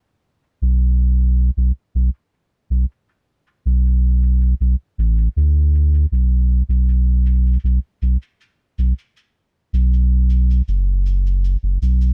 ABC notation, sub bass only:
X:1
M:4/4
L:1/16
Q:1/4=79
K:F#phr
V:1 name="Sub bass" clef=bass
z3 B,,,4- B,,, B,,, z B,,, z3 B,,, z | z3 B,,,4- B,,, B,,, z A,,,2 D,,4 | B,,,3 B,,,4- B,,, B,,, z B,,, z3 B,,, z | z3 B,,,4- B,,, F,,,4- F,,, F,,, B,,,2 |]